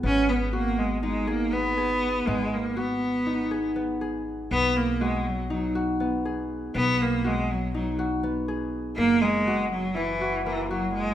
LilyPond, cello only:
\new Staff \with { instrumentName = "Cello" } { \clef bass \time 9/8 \key b \major \tempo 4. = 80 cis'8 b8 ais8 gis8 gis8 ais8 b4. | gis8 ais8 b2 r4. | b8 ais8 gis8 fis8 fis8 r2 | b8 ais8 gis8 fis8 fis8 r2 |
ais8 gis4 fis8 e4 e8 fis8 gis8 | }